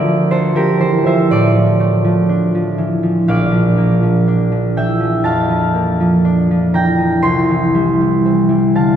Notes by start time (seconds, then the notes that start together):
Already playing: D2 A3 A4 A#4 D5 E5
0.05 F3
0.31 D4 A4 C5
0.55 F3 G4 A#4
0.80 E3 A4 C5
1.06 F3 C5 E5
1.31 A2 A4 D5
1.56 F3
1.80 A3
2.04 F3
2.29 D4
2.55 F3
2.78 E3
3.03 F3
3.28 A#1 D5 F5
3.52 F3
3.77 A#3
4.03 F3
4.28 D4
4.52 F3
4.77 E3 E5 G5
5.00 F3
5.24 F2 F5 A5
5.49 F3
5.74 A#3
6.00 F3
6.25 D4
6.51 F3
6.74 E3 G5 A#5
6.98 F3
7.22 C2 G5 C6
7.50 E3
7.75 G3
8.01 E3
8.25 C4
8.49 E3
8.75 D3 F5 A5